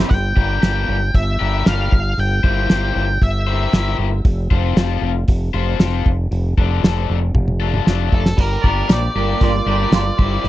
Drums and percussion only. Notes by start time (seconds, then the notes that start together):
0.11 kick, open hi-hat
0.37 kick
0.63 snare, open hi-hat
1.14 kick, open hi-hat
1.66 snare, open hi-hat
1.92 kick
2.18 open hi-hat
2.44 kick
2.70 snare, open hi-hat
3.22 kick, open hi-hat
3.73 snare, open hi-hat
4.25 kick, open hi-hat
4.51 kick
4.77 snare, open hi-hat
5.28 kick, open hi-hat
5.80 snare, open hi-hat
6.06 kick
6.32 open hi-hat
6.58 kick
6.84 snare, open hi-hat
7.35 kick, high tom
7.48 high tom
7.74 mid tom
7.87 snare
8.12 kick
8.26 snare
8.38 kick, crash
8.64 kick
8.89 snare, open hi-hat, tambourine
9.41 kick, open hi-hat
9.92 snare, open hi-hat, tambourine
10.19 kick
10.45 open hi-hat